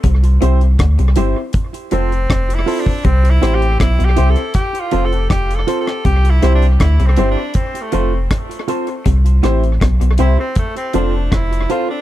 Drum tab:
HH |xxxxxxx-xxxxxxo-|xxxxxxxxxxxxxxx-|xxxxxxx-xxx-xxxx|xxxxxxx-xxx-xxx-|
SD |----r-------r---|--r-r-------r--r|--r-r-------r---|--r-r-------r---|
BD |o---o---o---o--o|o---o---o---o---|o---o---o---o---|o---o---o---o---|